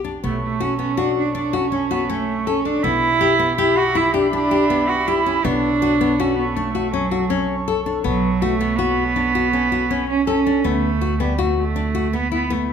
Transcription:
Already playing: upright bass B1
0.04 nylon-string guitar D4
0.24 upright bass B1, cello A3, nylon-string guitar B3, woodwind section A4 C#5 C#6
0.44 cello A3
0.60 cello C#4, nylon-string guitar F#4
0.79 nylon-string guitar B3, cello C#4
0.97 cello D4, nylon-string guitar F#4
1.17 cello D4
1.35 nylon-string guitar D4, cello D4
1.53 cello C#4, nylon-string guitar F#4
1.72 nylon-string guitar C#4
1.91 cello B3, nylon-string guitar F#4
2.09 cello A3, nylon-string guitar C#4
2.47 cello C#4, nylon-string guitar A4
2.65 nylon-string guitar D4, cello D4
2.83 upright bass B1, nylon-string guitar B3, cello E4, woodwind section G4 E5 B5
3.21 nylon-string guitar G4
3.39 nylon-string guitar B3
3.58 cello E4, nylon-string guitar G4
3.78 cello F#4
3.95 nylon-string guitar E4, cello E4
4.14 cello D4, nylon-string guitar G4
4.33 nylon-string guitar D4, cello D4
4.51 nylon-string guitar G4
4.70 nylon-string guitar B3
4.89 cello F#4
5.07 cello E4, nylon-string guitar G4
5.26 nylon-string guitar C#4
5.44 upright bass B1, nylon-string guitar B3, cello D4, woodwind section A4 C#5 C#6
5.82 nylon-string guitar F#4
6.01 nylon-string guitar B3
6.20 cello C#4, nylon-string guitar F#4
6.37 cello B3
6.56 cello A3, nylon-string guitar D4
6.75 nylon-string guitar F#4
6.94 cello F#3, nylon-string guitar C#4
7.11 nylon-string guitar F#4
7.30 nylon-string guitar C#4
7.68 nylon-string guitar A4
7.86 nylon-string guitar D4
8.04 upright bass B1, cello F#3, nylon-string guitar B3, woodwind section C#6
8.41 cello A3, nylon-string guitar F#4
8.60 nylon-string guitar B3
8.77 cello B3, nylon-string guitar F#4
9.16 nylon-string guitar D4
9.35 nylon-string guitar F#4
9.53 nylon-string guitar C#4
9.72 nylon-string guitar F#4
9.91 nylon-string guitar C#4
10.10 cello C#4
10.27 cello C#4, nylon-string guitar A4
10.46 nylon-string guitar D4
10.64 upright bass D2, cello A3, nylon-string guitar B3
11.01 nylon-string guitar F#4
11.20 cello G3, nylon-string guitar B3
11.38 cello A3, nylon-string guitar F#4
11.60 cello A3
11.76 nylon-string guitar D4
11.95 nylon-string guitar F#4
12.13 nylon-string guitar B3, cello B3
12.32 cello B3, nylon-string guitar E4
12.50 cello A3, nylon-string guitar B3

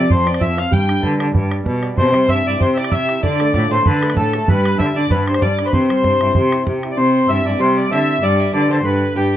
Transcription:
Already playing: accordion D5
0.00 fiddle D5
0.09 cello F2, upright piano F3, accordion C5, fiddle C5, bodhran
0.26 upright piano C4, accordion D5, bodhran
0.34 bodhran
0.41 cello F2, upright piano F3, accordion E5, fiddle E5, bodhran
0.57 upright piano C4, accordion F5, fiddle F5, bodhran
0.71 cello G2, upright piano G3, accordion G5, fiddle G5, bodhran
0.88 upright piano D4, bodhran
1.03 cello D3, upright piano B4, bodhran
1.19 cello D3, upright piano D5, bodhran
1.34 cello G2, upright piano B4, bodhran
1.51 upright piano D5, bodhran
1.66 cello B2, upright piano B4, bodhran
1.82 upright piano D5, bodhran
1.97 cello C3, upright piano C3, fiddle C5, accordion C5, bodhran
2.14 upright piano G3, bodhran
2.28 cello G2, upright piano C4, fiddle E5, accordion E5, bodhran
2.45 cello G2, upright piano E4, accordion D5
2.60 cello C3, upright piano G4, fiddle C5, accordion C5, bodhran
2.74 upright piano E4, fiddle D5, accordion D5 E5, bodhran
2.84 bodhran
2.92 cello C3, upright piano G4, fiddle E5, accordion E5, bodhran
3.09 upright piano E4, bodhran
3.23 cello D3, upright piano D3, fiddle D5, accordion D5, bodhran
3.34 fiddle D5
3.40 upright piano A3, fiddle D5, bodhran
3.54 cello A2, upright piano F4, accordion D5, fiddle D5, bodhran
3.71 cello A2, upright piano A3, fiddle C5, accordion C5
3.85 cello D3, upright piano D3, fiddle B4, accordion B4, bodhran
4.02 upright piano A3, bodhran
4.10 bodhran
4.16 cello A2, upright piano D3, fiddle A4, accordion A4, bodhran
4.33 upright piano A3, bodhran
4.47 cello G2, upright piano G3, fiddle B4, accordion B4, bodhran
4.65 upright piano D4, bodhran
4.78 cello D3, upright piano G3, accordion E5, fiddle E5, bodhran
4.95 cello D3, upright piano D4, accordion D5, fiddle D5
5.10 cello G2, upright piano G3, accordion B4, fiddle B4, bodhran
5.27 upright piano D4, accordion C5, fiddle C5, bodhran
5.34 bodhran
5.41 cello G2, upright piano G3, accordion D5, fiddle D5, bodhran
5.59 upright piano D4, bodhran
5.65 accordion B4, fiddle B4 C5
5.73 upright piano C3, cello C3, accordion C5, fiddle C5, bodhran
5.89 upright piano G3, bodhran
6.04 cello G2, upright piano C4, bodhran
6.20 cello G2, upright piano E4, bodhran
6.35 cello C3, upright piano G4, bodhran
6.51 upright piano E4, bodhran
6.67 cello C3, upright piano G4, bodhran
6.83 upright piano E4, bodhran
6.91 accordion D5
6.97 upright piano C3, cello C3, accordion C5, fiddle C5
7.28 cello G2, upright piano C4 E4 G4, accordion E5, fiddle E5
7.46 cello G2, accordion D5
7.60 cello C3, upright piano G3, accordion C5, fiddle C5
7.77 accordion D5, fiddle D5
7.91 cello D3, upright piano C4 E4 G4, accordion E5, fiddle E5
8.22 cello G2, upright piano G3, accordion D5, fiddle D5
8.40 fiddle E5
8.53 cello D3, upright piano D4 G4 B4, accordion D5, fiddle D5
8.71 cello D3, fiddle C5, accordion C5
8.84 cello G2, upright piano D3, accordion B4, fiddle B4
9.15 cello G2, upright piano D4 G4 B4, fiddle G4, accordion G4

